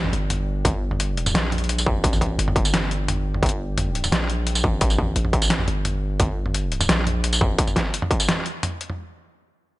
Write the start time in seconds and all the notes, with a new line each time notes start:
Already playing: A1 G3 D4 D5 G5
0.04 mid tom
0.13 G1, closed hi-hat
0.30 closed hi-hat, mid tom
0.65 G1, kick, closed hi-hat, mid tom
0.91 mid tom
1.00 closed hi-hat
1.17 closed hi-hat
1.26 mid tom, tambourine
1.34 A#1, snare, closed hi-hat
1.52 closed hi-hat, mid tom
1.58 closed hi-hat
1.64 closed hi-hat
1.69 closed hi-hat
1.78 tambourine
1.86 A1, kick, mid tom
2.04 kick, closed hi-hat
2.13 mid tom, tambourine
2.17 kick, mid tom
2.22 closed hi-hat, mid tom
2.26 mid tom
2.39 G1, closed hi-hat
2.48 mid tom
2.56 kick, closed hi-hat
2.65 tambourine
2.74 snare, closed hi-hat, mid tom
2.91 closed hi-hat
3.08 closed hi-hat, mid tom
3.34 mid tom
3.42 G1, kick, closed hi-hat, mid tom
3.46 closed hi-hat
3.49 closed hi-hat
3.78 closed hi-hat, mid tom
3.95 closed hi-hat
4.04 mid tom, tambourine
4.12 A#1, snare, closed hi-hat
4.30 closed hi-hat
4.47 closed hi-hat
4.55 tambourine
4.64 A1, kick, mid tom
4.81 kick, closed hi-hat
4.90 tambourine
4.99 kick, mid tom
5.16 A1, closed hi-hat
5.25 mid tom
5.33 kick, closed hi-hat
5.42 tambourine
5.50 snare, closed hi-hat
5.59 mid tom
5.68 G1, closed hi-hat
5.85 closed hi-hat, mid tom
6.20 G1, kick, closed hi-hat, mid tom
6.46 mid tom
6.54 closed hi-hat
6.72 closed hi-hat
6.81 mid tom, tambourine
6.89 A#1, snare, closed hi-hat
7.07 closed hi-hat, mid tom
7.24 closed hi-hat
7.33 tambourine
7.41 A1, kick, mid tom
7.58 kick, closed hi-hat
7.67 mid tom, tambourine
7.76 kick, snare, closed hi-hat
7.94 closed hi-hat
8.02 mid tom
8.11 kick, closed hi-hat
8.20 tambourine
8.29 snare, closed hi-hat, mid tom
8.46 closed hi-hat
8.63 closed hi-hat, mid tom
8.81 closed hi-hat
8.90 mid tom